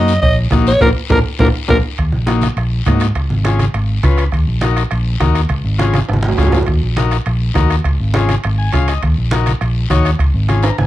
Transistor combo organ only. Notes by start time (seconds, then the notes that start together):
Already playing: A#3 D#4 F#4
0.52 A#3 D#4 F#4
0.81 A#3 D4 F4
1.09 A#3 D4 F4
1.39 A#3 D4 F4
1.68 A#3 D4 F4
2.27 A#3 D#4 F#4
2.86 A#3 D#4 F#4
3.44 C#4 F4 G#4
4.04 C#4 F4 B4
4.62 D#4 F#4 A#4
5.20 D#4 F#4 A#4
5.78 C#4 F4 G#4
6.38 C#4 F4 G#4
6.97 D#4 F#4 A#4
7.54 D#4 F#4 A#4
8.14 C#4 F4 G#4
8.58 G#5
8.73 C#4 F4 G#4 F5
8.89 D#5
9.31 D#4 F#4 A#4
9.90 D#4 F#4 C#5
10.48 C#4 F4 G#4
10.63 A#5
10.79 G#5